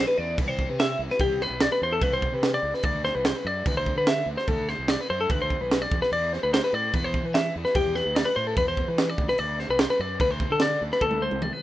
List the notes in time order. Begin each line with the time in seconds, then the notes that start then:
0.07 B4
0.18 E2 D5
0.38 C2 B4, kick, crash
0.48 C5
0.59 kick
0.69 C3 B4
0.79 E5, snare, crash
0.99 C2
1.10 B4, snare
1.19 C2 G4, kick, crash
1.41 B4, snare
1.50 B1
1.60 D5, snare, crash
1.72 B4
1.82 E2 C5
1.93 A4
2.01 C2 B4, kick, crash
2.14 C5
2.22 kick
2.32 C3 B4
2.43 snare, crash
2.54 D5
2.63 C#2
2.74 B4, snare
2.83 D2 D5, kick, crash
3.05 C5, snare
3.15 C2 B4
3.25 C5, snare, crash
3.36 B4
3.45 F#2 D5
3.66 D2 B4, kick, crash
3.77 C5
3.86 kick
3.96 D3 B4
4.07 E5, snare, crash
4.26 D2
4.38 C5, snare
4.47 D2 A4, kick, crash
4.69 C5, snare
4.79 C2
4.88 D5, snare, crash
5.01 B4
5.10 F#2 C5
5.21 A4
5.30 D2 B4, kick, crash
5.42 C5
5.50 kick
5.61 B1 B4
5.71 snare, crash
5.82 D5
5.91 E2, kick
6.02 B4, snare
6.12 E2 D5, crash
6.33 C5, snare
6.43 D2 B4
6.53 C5, snare, crash
6.64 B4
6.73 A2 D5
6.93 E2 B4, kick, crash
7.04 C5
7.14 kick
7.24 E3 B4
7.34 E5, snare, crash
7.56 E2
7.65 B4, snare
7.75 E2 G4, kick, crash
7.95 B4, snare
8.06 D2
8.15 D5, snare, crash
8.25 B4
8.36 A2 C5
8.47 A4
8.56 E2 B4, kick, crash
8.68 C5
8.77 kick
8.88 E3 B4
8.98 snare, crash
9.10 D5
9.18 D2, kick
9.28 B4, snare
9.38 D2 D5, crash
9.59 C5, snare
9.69 C2 B4
9.79 C5, snare, crash
9.90 B4
9.99 F#2 D5
10.20 D2 B4, kick, crash
10.31 C5
10.40 kick
10.50 D3 A4
10.59 D5, snare, crash
10.81 D2
10.92 B4, snare
11.01 D2 A4, kick
11.11 high tom
11.22 C5
11.31 C2, high tom
11.42 D5, mid tom
11.53 B4